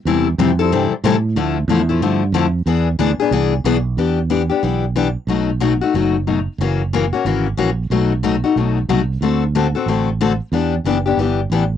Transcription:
X:1
M:4/4
L:1/8
Q:"Swing" 1/4=183
K:Ephr
V:1 name="Steel-string acoustic guitar"
[C,E,G,CEA] z [C,E,G,CEA] [G,CEA] [C,E,G,CEA] z [C,E,G,CEA] z | [D,F,A,E] z [D,F,A,E] [F,A,E] [D,F,A,E] z [D,F,A,E] z | [E,B,D^G] z [E,B,DG] [B,DG] [E,B,DG] z [E,B,DG] z | [K:Em] [E,B,DG] z [E,B,DG] [B,DG] [E,B,DG] z [E,B,DG] z |
[B,,F,A,^DF] z [B,,F,A,DF] [A,DF] [B,,F,A,DF] z [B,,F,A,DF] z | [^C,E,^A,^CF] z [C,E,A,CF] [A,CF] [C,E,A,CF] z [C,E,A,CF] z | [B,,F,A,^DF] z [B,,F,A,DF] [A,DF] [B,,F,A,DF] z [B,,F,A,DF] z | [D,A,CFA] z [D,A,CFA] [CFA] [D,A,CFA] z [D,A,CFA] z |
[E,B,DG] z [E,B,DG] [B,DG] [E,B,DG] z [E,B,DG] z |]
V:2 name="Fingered electric bass" clef=bass
E,,2 F,,2 G,, z A,,2 | D,,2 E,,2 G,,2 F,,2 | E,,2 D,, z C,,2 B,,,2 | [K:Em] E,,4 B,,,4 |
B,,,4 F,,,4 | F,,,4 ^G,,,2 ^A,,,2 | B,,,4 B,,,2 C,,2 | D,,4 A,,,4 |
E,,2 F,,,2 G,,,2 A,,,2 |]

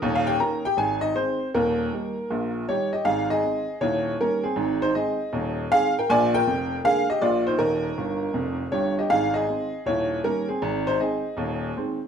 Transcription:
X:1
M:4/4
L:1/16
Q:"Swing" 1/4=159
K:Ab
V:1 name="Upright piano"
z f [Gg]2 [Bb]2 [Gg]2 [Aa]2 [Ee]2 [Cc]4 | [B,B]12 [Gd]2 [Ge]2 | [Af]2 [Ae]6 [_Fd]4 [DB]2 [CA]2- | [CA]2 [Ec]2 [Ae]8 [Af]2 [Bg]2 |
[=da]2 [Bg]6 [Af]2 [Ge]2 [Fd]2 [Ec]2 | [EB]12 [Gd]2 [Ge]2 | [Af]2 [Ae]6 [_Fd]4 [DB]2 [CA]2- | [CA]2 [Ec]2 [Ae]8 z4 |]
V:2 name="Upright piano" clef=bass
[E,,,E,,]4 [E,B,D]4 [A,,,A,,]4 [E,A,]4 | [E,,,E,,]4 [E,G,E]4 [B,,,B,,]4 [E,G,E]4 | [A,,,A,,]4 [E,A,C]4 [E,,,E,,]4 [E,G,B,]4 | [A,,,A,,]4 [E,A,C]4 [E,,,E,,]4 [E,A,C]4 |
[B,,,B,,]4 [F,,,F,,]4 [=D,A,B,]4 [B,,,B,,]4 | [E,,,E,,]4 [G,,,G,,]4 [F,,,F,,]4 [G,,,G,,]4 | [A,,,A,,]4 [E,A,C]4 [E,,,E,,]4 [E,G,B,]4 | [A,,,A,,]4 [E,A,C]4 [E,,,E,,]4 [E,A,C]4 |]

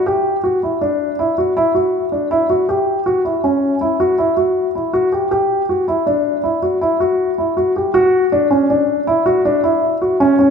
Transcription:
X:1
M:7/4
L:1/8
Q:1/4=160
K:D
V:1 name="Grand piano"
G2 F E D2 E F E F2 D E F | G2 F E C2 E F E F2 E F G | G2 F E D2 E F E F2 E F G | F2 D C D2 E F D E2 F C C |]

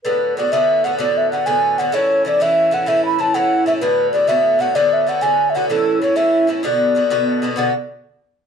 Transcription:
X:1
M:6/8
L:1/16
Q:3/8=128
K:Bdor
V:1 name="Flute"
B4 d2 e4 f2 | d2 e2 f2 g4 f2 | c4 d2 e4 f2 | e2 b2 a2 f4 e2 |
B4 d2 e4 f2 | d2 e2 f2 g3- g/2 e/2 f2 | A4 c2 e4 z2 | d8 z4 |
f2 z8 z2 |]
V:2 name="Bouzouki" clef=bass
[A,,D,B,F]4 [A,,D,B,F]2 [A,,D,B,F]4 [A,,D,B,F]2 | [A,,D,B,F]4 [A,,D,B,F]2 [A,,D,B,F]4 [A,,D,B,F]2 | [A,,E,CE]4 [A,,E,CE]2 [A,,E,CE]4 [A,,E,CE]2 | [A,,E,CE]4 [A,,E,CE]2 [A,,E,CE]4 [A,,E,CE]2 |
[A,,D,B,F]4 [A,,D,B,F]2 [A,,D,B,F]4 [A,,D,B,F]2 | [A,,D,B,F]4 [A,,D,B,F]2 [A,,D,B,F]4 [A,,D,B,F]2 | [A,,E,CE]4 [A,,E,CE]2 [A,,E,CE]4 [A,,E,CE]2 | [B,,D,B,F]4 [B,,D,B,F]2 [B,,D,B,F]4 [B,,D,B,F]2 |
[B,,D,B,F]2 z8 z2 |]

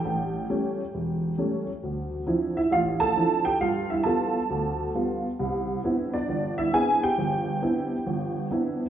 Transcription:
X:1
M:4/4
L:1/8
Q:"Swing" 1/4=134
K:C
V:1 name="Honky-tonk piano"
[Gg]6- [Gg] z | z3 [Ee] [Ff] [Aa]2 [Gg] | [Ff] [Ee] [Aa]4 z2 | z3 [Dd]2 [Ee] [_A_a] [Gg]- |
[Gg]6 z2 |]
V:2 name="Honky-tonk piano"
A,,,2 [G,A,^C] z E,,,2 [G,A,C] z | D,,2 [F,CDE] z A,,,2 [F,CDE] z | G,,2 [G,B,F] z D,,2 [G,B,F] z | C,,2 [B,CDE] z G,,,2 [B,CDE] z |
G,,,2 [B,CDE] z G,,,2 [B,CDE] z |]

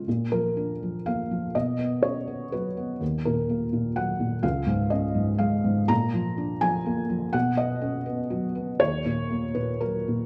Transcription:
X:1
M:3/4
L:1/8
Q:1/4=123
K:Ebm
V:1 name="Felt piano"
z B3 f2 | ^d2 ^c2 =B2 | z B3 g2 | f2 e2 f2 |
b3 a3 | ^f ^d2 z3 | d3 c B2 |]
V:2 name="Felt piano" clef=bass
B,, F, =D F, B, F, | =B,, =B, ^C B, ^F, B, | E,, B,, B, B,, G, B,, | D,, A,, D A,, A, A,, |
B,, F, =D F, B, F, | =B,, =B, ^C B, ^F, B, | E,, B,, B, B,, G, B,, |]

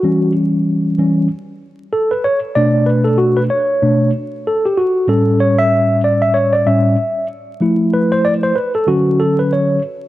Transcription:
X:1
M:4/4
L:1/16
Q:"Swing 16ths" 1/4=95
K:Edor
V:1 name="Tine electric piano"
F2 z8 z2 A B c2 | d2 B A F B c4 z2 A G F2 | A2 c e3 d e c d e4 z2 | z2 B =c d c B A F2 A B ^c2 z2 |]
V:2 name="Tine electric piano" clef=bass
[E,G,C]6 [E,G,C]2 z8 | [B,,A,D]6 z2 [B,,A,D]2 z6 | [A,,G,C]8- [A,,G,C]2 [A,,G,C]2 z4 | [=F,A,E]6 z2 [D,^F,C]6 z2 |]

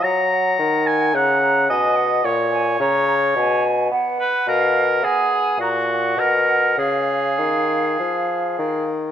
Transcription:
X:1
M:4/4
L:1/8
Q:1/4=107
K:F#
V:1 name="Flute"
f f3 a a g f | f g a a g2 f2 | e z g g a f3 | e6- e z |]
V:2 name="Oboe"
a3 g f2 d2 | c2 c3 z2 B | A2 G2 F2 A2 | G6- G z |]
V:3 name="Bassoon" clef=bass
F,2 D,2 C,2 B,,2 | A,,2 C,2 B,,2 B, z | B,,2 B,2 A,,2 B,,2 | C,2 D,2 E,2 D,2 |]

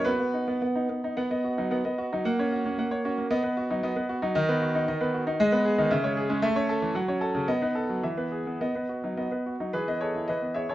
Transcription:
X:1
M:2/4
L:1/16
Q:1/4=112
K:B
V:1 name="Grand piano"
[FB]4 z4 | f d F F, f d F F, | f c F A, f c F A, | d B F F, d B F F, |
d B F2 d B F D | [K:E] d B G D, e c G G, | e c A E, f c A C, | d B A F, e B G B, |
d B F F, d B F F, | [GB] [Bd] [Ac]2 [Bd]2 [ce] [Ac] |]
V:2 name="Grand piano"
B, B, D B, B, D B, D | B, B,2 D B, B,2 D | A, C2 C A,2 C2 | B, B,2 D B, B,2 D |
D, B,2 D D, B,2 z | [K:E] G, B,2 D C, G,2 C | A, C2 z F, C2 z | B, D2 z E, B,2 z |
B, B,2 D B, B,2 D | E, B, G E E, B, G E |]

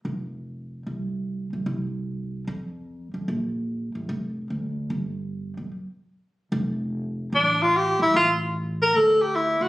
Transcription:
X:1
M:4/4
L:1/8
Q:"Swing" 1/4=148
K:F
V:1 name="Tenor saxophone"
z8 | z8 | z8 | z8 |
z4 D F G E | F z2 B A G E ^F |]
V:2 name="Upright bass" clef=bass
F,,,4 C,,3 =B,,, | C,,4 F,,3 F,, | B,,,3 A,,, F,,,2 D,,2 | G,,,3 =B,,, z4 |
F,,,4 A,,,3 B,,, | A,,,4 D,,3 D,, |]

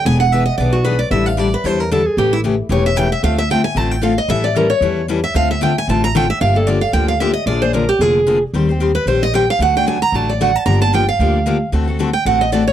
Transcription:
X:1
M:4/4
L:1/8
Q:"Swing" 1/4=226
K:Dm
V:1 name="Steel-string acoustic guitar"
^g ^f e _e d ^F =B d | e f d =B c _B A ^G | G E z2 ^c e g e | f e g ^g a =g f _e |
e d B ^c3 z e | f e g ^g a b =g e | [K:Gm] f A d f g f =e _e | d c B G _A3 z |
z3 =B c e g f | ^f g _a b =a d f a | b a g f4- f | z3 g ^f e d ^c |]
V:2 name="Steel-string acoustic guitar"
[E,=B,D^G] z [E,B,DG] z [E,B,DG] z [E,B,DG] z | [D,G,DEA] z [D,G,DEA] z [D,G,DEA] z [D,G,DEA] z | [^C,E,A,^CG] z [C,E,A,CG] z [C,E,A,CG] z [C,E,A,CG] z | [D,A,CFA] z [D,A,CFA] z [D,A,CFA] z [D,A,CFA] z |
[E,G,^CEA] z [E,G,CEA] z [E,G,CEA] z [E,G,CEA] z | [D,A,CFA] z [D,A,CFA] z [D,A,CFA] z [D,A,CFA] z | [K:Gm] [D,F,B,DG] [B,DG] [D,F,B,DG] z [D,F,B,DG] z [D,F,B,DG] z | [D,F,B,D_A] [B,DA] [D,F,B,DA] z [D,F,B,DA] z [D,F,B,DA] z |
[E,G,CGc] [CGc] [E,G,CGc] z [E,G,CGc] z [E,G,CGc] z | [D,^F,A,D^F] [A,DF] [D,F,A,DF] z [D,F,A,DF] z [D,F,A,DF] z | [D,F,B,DG] [B,DG] [D,F,B,DG] z [D,F,B,DG] z [D,F,B,DG] z | [D,A,C^FA] [CFA] [D,A,CFA] z [D,A,CFA] z [D,A,CFA] z |]
V:3 name="Upright bass" clef=bass
E,,,4 =B,,,4 | A,,,4 E,,4 | A,,,4 E,,,4 | D,,4 A,,,4 |
A,,,4 E,,4 | D,,4 A,,,4 | [K:Gm] G,,,4 D,,4 | B,,,4 F,,,4 |
E,,4 B,,,4 | D,,4 A,,,4 | G,,,4 D,,4 | D,,4 A,,,4 |]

